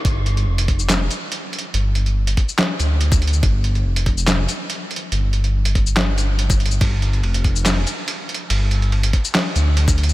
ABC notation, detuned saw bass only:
X:1
M:4/4
L:1/8
Q:1/4=142
K:Cdor
V:1 name="Detuned saw bass" clef=bass
G,,,2 F,,,3 z3 | G,,,3 z2 D,,3 | G,,,2 F,,,3 z3 | G,,,3 G,,,4- G,,, |
G,,,2 F,,,3 z3 | G,,,3 z2 D,,3 |]